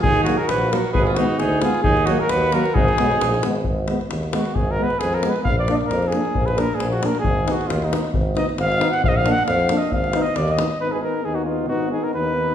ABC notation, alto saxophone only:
X:1
M:2/4
L:1/16
Q:"Swing 16ths" 1/4=134
K:none
V:1 name="Alto saxophone"
_E2 E _G G2 G2 | _A F _E2 E2 F2 | _E2 E _G G2 G2 | _E6 z2 |
z8 | z8 | z8 | z8 |
z8 | z8 | z8 | z8 |
z8 | z8 |]